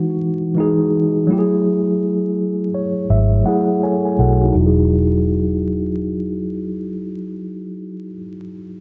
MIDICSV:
0, 0, Header, 1, 3, 480
1, 0, Start_track
1, 0, Key_signature, 4, "major"
1, 0, Tempo, 722892
1, 1092, Time_signature, 4, 2, 24, 8
1, 5847, End_track
2, 0, Start_track
2, 0, Title_t, "Tine electric piano"
2, 0, Program_c, 0, 4
2, 0, Control_c, 0, 64, 127
2, 0, Note_on_c, 0, 52, 84
2, 0, Note_on_c, 0, 56, 73
2, 0, Note_on_c, 0, 63, 74
2, 0, Note_on_c, 0, 66, 85
2, 91, Note_off_c, 0, 52, 0
2, 96, Note_off_c, 0, 56, 0
2, 102, Note_off_c, 0, 63, 0
2, 108, Note_off_c, 0, 66, 0
2, 365, Note_on_c, 0, 52, 76
2, 375, Note_on_c, 0, 56, 77
2, 386, Note_on_c, 0, 63, 80
2, 401, Note_on_c, 0, 68, 93
2, 844, Note_on_c, 0, 54, 94
2, 848, Note_off_c, 0, 52, 0
2, 853, Note_off_c, 0, 56, 0
2, 856, Note_on_c, 0, 57, 72
2, 859, Note_off_c, 0, 63, 0
2, 859, Control_c, 0, 64, 0
2, 866, Note_off_c, 0, 68, 0
2, 869, Note_on_c, 0, 64, 69
2, 881, Note_on_c, 0, 67, 78
2, 920, Note_off_c, 0, 67, 0
2, 922, Note_on_c, 0, 68, 89
2, 970, Control_c, 0, 64, 127
2, 1768, Note_off_c, 0, 54, 0
2, 1775, Note_off_c, 0, 57, 0
2, 1781, Note_off_c, 0, 64, 0
2, 1807, Note_off_c, 0, 68, 0
2, 1823, Note_on_c, 0, 73, 60
2, 2041, Note_off_c, 0, 73, 0
2, 2060, Note_on_c, 0, 76, 64
2, 2279, Note_off_c, 0, 76, 0
2, 2281, Note_on_c, 0, 54, 75
2, 2289, Note_on_c, 0, 57, 69
2, 2294, Note_on_c, 0, 78, 68
2, 2301, Note_on_c, 0, 64, 72
2, 2314, Note_on_c, 0, 68, 84
2, 2516, Note_off_c, 0, 78, 0
2, 2536, Note_off_c, 0, 64, 0
2, 2542, Note_on_c, 0, 73, 56
2, 2543, Note_off_c, 0, 68, 0
2, 2544, Note_on_c, 0, 80, 69
2, 2548, Note_on_c, 0, 69, 59
2, 2678, Note_off_c, 0, 80, 0
2, 2690, Note_on_c, 0, 80, 56
2, 2765, Note_off_c, 0, 73, 0
2, 2768, Note_off_c, 0, 69, 0
2, 2770, Note_off_c, 0, 80, 0
2, 2786, Note_on_c, 0, 78, 62
2, 2788, Note_on_c, 0, 69, 62
2, 2791, Note_on_c, 0, 66, 48
2, 2922, Note_off_c, 0, 66, 0
2, 2923, Note_off_c, 0, 69, 0
2, 2930, Note_on_c, 0, 66, 57
2, 2933, Note_on_c, 0, 63, 48
2, 2947, Note_off_c, 0, 54, 0
2, 2955, Note_on_c, 0, 54, 76
2, 2981, Note_off_c, 0, 57, 0
2, 2995, Note_off_c, 0, 63, 0
2, 3002, Note_off_c, 0, 78, 0
2, 3003, Note_on_c, 0, 63, 60
2, 3020, Control_c, 0, 64, 0
2, 3048, Note_on_c, 0, 64, 58
2, 3095, Note_on_c, 0, 68, 73
2, 3149, Control_c, 0, 64, 127
2, 3154, Note_off_c, 0, 66, 0
2, 5366, Note_off_c, 0, 54, 0
2, 5414, Note_off_c, 0, 63, 0
2, 5460, Note_off_c, 0, 64, 0
2, 5507, Note_off_c, 0, 68, 0
2, 5847, End_track
3, 0, Start_track
3, 0, Title_t, "Fingered electric bass"
3, 0, Program_c, 1, 33
3, 2057, Note_on_c, 1, 32, 93
3, 2264, Note_off_c, 1, 32, 0
3, 2780, Note_on_c, 1, 35, 82
3, 2985, Note_off_c, 1, 35, 0
3, 3019, Note_on_c, 1, 28, 88
3, 5430, Note_off_c, 1, 28, 0
3, 5847, End_track
0, 0, End_of_file